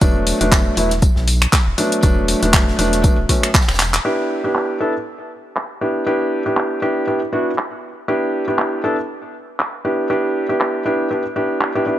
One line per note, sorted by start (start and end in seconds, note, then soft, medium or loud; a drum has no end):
0.01 0.33 E1 loud
0.01 0.37 F#3 medium
0.01 0.37 A3 medium
0.01 0.37 B3 medium
0.01 0.38 D4 loud
0.01 kick loud
0.01 closed hi-hat medium
0.01 tambourine medium
0.27 open hi-hat loud
0.27 tambourine medium
0.41 0.71 E1 medium
0.41 0.74 F#3 medium
0.41 0.74 A3 medium
0.41 0.74 B3 medium
0.41 0.74 D4 medium
0.41 snare soft
0.41 closed hi-hat medium
0.52 kick loud
0.52 snare loud
0.52 clap loud
0.52 closed hi-hat medium
0.52 tambourine medium
0.77 1.09 E1 medium
0.77 0.89 F#3 medium
0.77 0.89 A3 medium
0.77 0.89 B3 medium
0.77 0.89 E4 medium
0.77 open hi-hat medium
0.77 tambourine medium
0.91 snare medium
0.91 closed hi-hat medium
1.02 kick loud
1.02 closed hi-hat medium
1.02 tambourine medium
1.16 1.47 B1 loud
1.16 snare soft
1.28 open hi-hat loud
1.28 tambourine medium
1.42 finger snap medium
1.42 closed hi-hat medium
1.42 closed hi-hat soft
1.53 kick loud
1.53 snare loud
1.53 clap loud
1.53 closed hi-hat medium
1.53 tambourine medium
1.67 1.74 E1 medium
1.78 2.00 F#3 medium
1.78 2.00 A3 medium
1.78 2.01 B3 medium
1.78 2.01 D4 medium
1.78 open hi-hat medium
1.78 tambourine medium
1.92 closed hi-hat medium
2.03 2.35 E1 loud
2.03 2.39 F#3 loud
2.03 2.39 A3 medium
2.03 2.39 B3 medium
2.03 2.39 D4 loud
2.03 kick loud
2.03 closed hi-hat medium
2.03 tambourine medium
2.28 open hi-hat loud
2.28 tambourine medium
2.43 2.73 E1 loud
2.43 2.76 F#3 medium
2.43 2.76 A3 medium
2.43 2.76 B3 medium
2.43 2.76 D4 medium
2.43 snare soft
2.43 closed hi-hat medium
2.53 kick loud
2.53 snare loud
2.53 clap loud
2.53 closed hi-hat medium
2.53 tambourine medium
2.68 snare medium
2.79 3.10 E1 medium
2.79 3.01 F#3 medium
2.79 3.01 A3 medium
2.79 3.01 B3 medium
2.79 3.01 D4 loud
2.79 open hi-hat medium
2.79 tambourine medium
2.93 snare soft
2.93 closed hi-hat medium
3.04 3.15 F#3 medium
3.04 3.15 A3 medium
3.04 3.15 B3 medium
3.04 3.15 D4 medium
3.04 kick loud
3.04 closed hi-hat medium
3.04 tambourine medium
3.18 3.25 D1 medium
3.29 3.47 F#3 medium
3.29 3.47 A3 medium
3.29 3.47 B3 medium
3.29 3.47 C#4 medium
3.29 kick medium
3.29 open hi-hat loud
3.29 tambourine medium
3.43 finger snap medium
3.43 snare soft
3.43 closed hi-hat medium
3.54 kick loud
3.54 snare medium
3.54 clap loud
3.54 closed hi-hat medium
3.54 tambourine medium
3.61 snare medium
3.61 tambourine medium
3.68 3.99 E1 loud
3.68 finger snap medium
3.68 snare loud
3.68 tambourine medium
3.74 snare medium
3.74 tambourine medium
3.79 snare loud
3.79 clap medium
3.79 open hi-hat medium
3.79 tambourine medium
3.94 clap loud
3.94 closed hi-hat medium
4.05 4.41 B3 medium
4.05 4.41 D4 medium
4.05 4.41 E4 medium
4.05 4.41 G4 medium
4.05 crash medium
4.44 4.78 B3 medium
4.44 4.78 D4 medium
4.44 4.78 E4 medium
4.44 4.78 G4 medium
4.55 clap loud
4.80 4.92 B3 medium
4.80 4.92 D4 medium
4.80 4.92 E4 medium
4.80 4.92 A4 medium
5.56 clap loud
5.81 6.04 B3 medium
5.81 6.04 D4 medium
5.81 6.04 E4 medium
5.81 6.04 G4 medium
6.06 6.42 B3 medium
6.06 6.43 D4 medium
6.06 6.43 E4 medium
6.06 6.43 G4 medium
6.46 6.79 B3 medium
6.46 6.79 D4 medium
6.46 6.80 E4 medium
6.46 6.80 G4 medium
6.57 clap loud
6.82 7.05 B3 medium
6.82 7.05 D4 medium
6.82 7.05 E4 medium
6.82 7.05 G4 medium
7.07 7.19 B3 medium
7.07 7.19 D4 medium
7.07 7.19 E4 medium
7.07 7.19 G4 medium
7.33 7.50 B3 medium
7.33 7.50 D4 medium
7.33 7.50 E4 medium
7.33 7.50 F#4 medium
7.58 clap loud
8.08 8.44 B3 medium
8.08 8.44 D4 medium
8.08 8.44 E4 medium
8.08 8.44 G4 medium
8.48 8.81 B3 medium
8.48 8.81 D4 medium
8.48 8.81 E4 medium
8.48 8.81 G4 medium
8.59 clap loud
8.84 8.95 B3 medium
8.84 8.95 D4 medium
8.84 8.95 E4 medium
8.84 8.95 A4 medium
9.60 clap loud
9.85 10.07 B3 medium
9.85 10.07 D4 medium
9.85 10.07 E4 medium
9.85 10.07 G4 medium
10.10 10.46 B3 medium
10.10 10.46 D4 medium
10.10 10.46 E4 medium
10.10 10.46 G4 medium
10.49 10.83 B3 medium
10.49 10.83 D4 medium
10.49 10.83 E4 medium
10.49 10.83 G4 medium
10.60 clap loud
10.85 11.08 B3 medium
10.85 11.08 D4 medium
10.85 11.08 E4 medium
10.85 11.08 G4 medium
11.11 11.22 B3 medium
11.11 11.22 D4 medium
11.11 11.22 E4 medium
11.11 11.22 G4 medium
11.36 11.72 B3 medium
11.36 11.72 D4 medium
11.36 11.72 E4 medium
11.36 11.72 G4 medium
11.61 clap loud
11.75 11.84 B3 medium
11.75 11.84 D4 medium
11.75 11.84 E4 medium
11.75 11.84 G4 medium
11.86 11.99 B3 medium
11.86 11.99 D4 medium
11.86 11.99 E4 medium
11.86 11.99 G4 medium